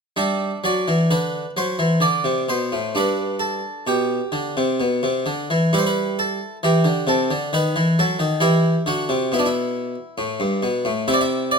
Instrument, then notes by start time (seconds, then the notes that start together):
harpsichord
0.16 G3 D4 E5
0.64 F#3 D5
0.88 E3
1.11 D3 B4
1.57 F#3 C5
1.79 E3
2.00 D3 D5
2.24 C3
2.49 B2 C5
2.72 A2
2.95 G2 D4 B4
3.39 A4
3.87 B2 G4
4.32 D3
4.57 C3
4.80 B2
5.03 C3
5.26 D3
5.50 E3
5.73 G3 E4 B4
5.78 C5
5.87 B4
6.19 A4
6.63 E3 G4
6.84 D3
7.07 C3 A4
7.31 D3
7.53 D#3 B4
7.76 E3
7.99 F#3 A4
8.19 D#3
8.40 E3 E4 G4
8.86 D3 F#4
9.09 C3
9.32 B2 E4
9.39 D4
9.45 E4
10.18 A2
10.40 G2
10.63 B2
10.85 A2
11.08 C3 E4 E5
11.14 D5
11.21 E5
11.51 D5